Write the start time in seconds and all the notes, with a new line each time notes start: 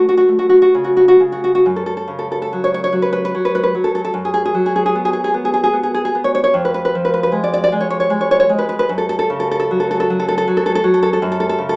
Already playing: F#2 A3
0.09 F#4
0.17 F#4
0.29 A3
0.39 F#4
0.49 F#4
0.62 F#4
0.75 C#3
0.84 F#4
0.97 F#4
1.08 F#4
1.20 C#3
1.32 F#4
1.44 F#4
1.55 F#4
1.66 F#2
1.76 A4
1.86 A4
1.97 A4
2.08 C#3
2.19 A4
2.32 A4
2.42 A4
2.53 F#3
2.64 C#5
2.74 C#5
2.84 C#5
2.92 F#3
3.02 B4
3.13 B4
3.25 B4
3.35 F#3
3.45 B4
3.55 B4
3.63 B4
3.75 F#3
3.84 A4
3.95 A4
4.04 A4
4.14 F#2
4.25 G#4
4.34 G#4
4.45 G#4
4.54 F#3
4.66 G#4
4.76 G#4
4.86 G#4
4.95 B3
5.05 G#4
5.13 G#4
5.24 G#4
5.34 B3
5.45 G#4
5.54 G#4
5.64 G#4
5.73 B3
5.83 G#4
5.94 G#4
6.05 G#4
6.15 B3
6.24 C#5
6.35 C#5
6.44 C#5
6.54 F2
6.65 B4
6.74 B4
6.85 B4
6.95 F3
7.05 B4
7.14 B4
7.23 B4
7.32 G#3
7.44 D5
7.54 D5
7.64 D5
7.72 G#3
7.80 C#5
7.90 C#5
8.00 C#5
8.10 G#3
8.21 C#5
8.31 C#5
8.40 C#5
8.49 G#3
8.59 B4
8.69 B4
8.79 B4
8.89 F#2
8.98 A4
9.09 A4
9.19 A4
9.30 C#3
9.40 A4
9.51 A4
9.60 A4
9.71 F#3
9.80 A4
9.91 A4
10.00 A4
10.10 F#3
10.20 A4
10.28 A4
10.38 A4
10.48 F#3
10.57 A4
10.66 A4
10.75 A4
10.84 F#3
10.94 A4
11.03 A4
11.13 A4
11.22 F#2
11.32 A4
11.40 A4
11.49 A4
11.58 C#3
11.69 A4